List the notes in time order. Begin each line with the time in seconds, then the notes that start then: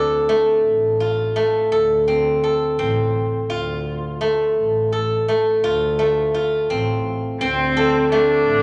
Already playing: D2 A3 C4 D4 F4 A4
0.29 A3
0.64 A1
1.00 F4
1.36 A3
1.72 D2 A4
2.08 C4
2.44 A4
2.79 A1 C4
3.50 D2 F4
4.21 A3
4.57 A1
4.92 A4
5.28 A3
5.64 D2 F4
5.99 A3
6.34 F4
6.70 A1 C4
7.41 D2 C4
7.77 A4
8.12 A3 D4
8.48 A1